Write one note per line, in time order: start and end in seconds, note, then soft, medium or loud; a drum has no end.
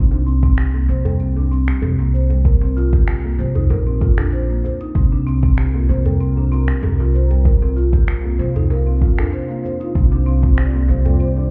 0.00 0.85 C2 medium
0.00 0.10 C4 medium
0.11 0.26 D4 medium
0.11 djembe slap medium
0.26 0.36 C4 loud
0.26 shaker medium
0.43 0.56 C4 loud
0.43 kick loud
0.43 closed hi-hat medium
0.43 shaker soft
0.58 0.74 G4 medium
0.58 finger snap medium
0.58 closed hi-hat soft
0.58 shaker medium
0.74 0.88 A#3 medium
0.74 djembe tone medium
0.89 1.63 C2 medium
0.89 1.04 C5 medium
0.89 djembe slap medium
0.89 shaker medium
1.05 1.19 G3 medium
1.05 closed hi-hat medium
1.05 djembe bass loud
1.05 shaker soft
1.20 1.35 C4 medium
1.20 closed hi-hat soft
1.20 shaker soft
1.36 1.51 D4 medium
1.36 djembe tone medium
1.52 1.61 C4 medium
1.52 shaker medium
1.68 1.81 G4 medium
1.68 finger snap medium
1.68 closed hi-hat medium
1.68 shaker soft
1.82 3.35 C2 loud
1.82 1.98 G4 medium
1.82 closed hi-hat soft
1.82 djembe bass medium
1.82 shaker soft
1.99 2.12 A#3 medium
1.99 djembe slap medium
1.99 djembe tone medium
1.99 shaker soft
2.14 2.29 C5 medium
2.14 shaker medium
2.30 2.44 G3 medium
2.30 closed hi-hat medium
2.30 djembe tone medium
2.30 shaker soft
2.45 2.61 A#4 medium
2.45 kick loud
2.45 closed hi-hat soft
2.45 shaker soft
2.61 2.75 C4 medium
2.61 djembe slap medium
2.77 2.92 F4 loud
2.77 shaker medium
2.93 3.07 G4 medium
2.93 kick loud
2.93 closed hi-hat medium
2.93 djembe tone soft
2.93 shaker soft
3.08 3.23 G4 medium
3.08 finger snap medium
3.08 closed hi-hat soft
3.08 shaker soft
3.24 3.38 A#3 medium
3.24 djembe tone medium
3.39 3.70 C2 medium
3.39 3.54 C5 medium
3.39 djembe slap medium
3.39 shaker medium
3.55 3.69 D#4 medium
3.55 closed hi-hat soft
3.55 djembe bass medium
3.55 shaker soft
3.70 4.60 A#1 medium
3.70 3.86 A#4 loud
3.70 closed hi-hat soft
3.70 djembe slap medium
3.70 djembe tone medium
3.70 shaker soft
3.87 4.00 C4 medium
4.01 4.17 F4 medium
4.01 kick loud
4.01 djembe tone medium
4.01 shaker medium
4.18 4.32 D4 medium
4.18 finger snap medium
4.18 closed hi-hat medium
4.18 djembe bass medium
4.18 shaker soft
4.33 4.49 C5 medium
4.33 closed hi-hat soft
4.33 shaker soft
4.50 4.63 A#3 medium
4.50 shaker soft
4.64 4.79 C5 medium
4.64 djembe tone medium
4.64 shaker medium
4.81 4.94 D#4 medium
4.81 closed hi-hat medium
4.81 shaker soft
4.95 5.85 C2 medium
4.95 11.50 C3 medium
4.95 5.10 C4 medium
4.95 kick loud
4.95 closed hi-hat soft
4.95 shaker soft
5.12 11.50 C4 medium
5.12 5.26 D4 medium
5.12 djembe slap medium
5.27 5.36 C4 medium
5.27 shaker medium
5.42 5.57 C4 loud
5.42 11.50 F4 medium
5.42 kick loud
5.42 closed hi-hat soft
5.42 shaker soft
5.54 5.74 G4 medium
5.54 10.06 A#4 medium
5.54 finger snap medium
5.54 closed hi-hat soft
5.59 shaker soft
5.74 5.88 A#3 medium
5.74 djembe tone medium
5.89 6.63 C2 medium
5.89 6.04 C5 medium
5.89 djembe slap medium
5.89 shaker medium
6.06 6.19 G3 medium
6.06 closed hi-hat medium
6.06 djembe bass medium
6.06 shaker soft
6.20 6.35 C4 medium
6.20 closed hi-hat soft
6.20 shaker soft
6.36 6.51 D4 medium
6.36 djembe tone medium
6.52 6.61 C4 medium
6.52 shaker medium
6.68 6.82 G4 medium
6.68 finger snap medium
6.68 closed hi-hat medium
6.68 shaker soft
6.83 8.35 C2 loud
6.83 6.99 G4 medium
6.83 closed hi-hat soft
6.83 djembe bass medium
6.83 shaker soft
7.00 7.13 F4 medium
7.00 djembe slap medium
7.00 djembe tone medium
7.00 shaker soft
7.14 7.29 C5 medium
7.14 shaker medium
7.30 7.44 G3 medium
7.30 closed hi-hat medium
7.30 djembe tone medium
7.30 shaker soft
7.45 7.61 A#4 medium
7.45 kick loud
7.45 closed hi-hat soft
7.45 shaker soft
7.62 7.75 C4 medium
7.62 djembe slap medium
7.77 7.92 F4 loud
7.77 shaker medium
7.93 8.07 G4 medium
7.93 kick loud
7.93 closed hi-hat soft
7.93 djembe tone soft
7.93 shaker soft
8.08 8.23 G4 medium
8.08 finger snap medium
8.08 closed hi-hat soft
8.08 shaker soft
8.24 8.37 A#3 medium
8.24 djembe tone medium
8.39 9.13 C2 medium
8.39 8.54 C5 medium
8.39 djembe slap medium
8.39 shaker medium
8.56 8.69 D#4 medium
8.56 closed hi-hat medium
8.56 djembe bass medium
8.56 shaker soft
8.70 8.86 A#4 loud
8.70 closed hi-hat soft
8.70 djembe slap medium
8.70 djembe tone medium
8.70 shaker soft
8.87 9.00 C4 medium
9.01 9.17 F4 medium
9.01 kick medium
9.01 djembe tone medium
9.01 shaker medium
9.18 9.32 D4 medium
9.18 finger snap medium
9.18 closed hi-hat medium
9.18 djembe bass medium
9.18 shaker soft
9.33 9.48 C5 medium
9.33 closed hi-hat soft
9.33 shaker soft
9.49 9.62 A#3 medium
9.49 shaker soft
9.64 9.79 C5 medium
9.64 djembe tone medium
9.64 shaker medium
9.80 9.94 D#4 medium
9.80 closed hi-hat medium
9.80 shaker soft
9.88 11.50 C5 medium
9.95 10.85 C2 medium
9.95 10.10 C4 medium
9.95 kick loud
9.95 closed hi-hat soft
9.95 shaker soft
10.12 10.26 D4 medium
10.12 djembe slap medium
10.26 10.36 C4 loud
10.26 shaker medium
10.43 10.56 C4 loud
10.43 kick medium
10.43 closed hi-hat medium
10.43 shaker soft
10.50 11.50 D5 medium
10.57 10.73 G4 medium
10.57 finger snap medium
10.57 closed hi-hat soft
10.57 shaker soft
10.74 10.87 A#3 medium
10.74 djembe tone medium
10.88 11.50 C2 medium
10.88 11.04 C5 medium
10.88 djembe slap medium
10.88 shaker medium
11.05 11.18 G3 medium
11.05 closed hi-hat medium
11.05 djembe bass medium
11.05 shaker soft
11.20 11.35 C4 medium
11.20 closed hi-hat soft
11.20 shaker soft
11.36 11.50 D4 medium
11.36 djembe tone medium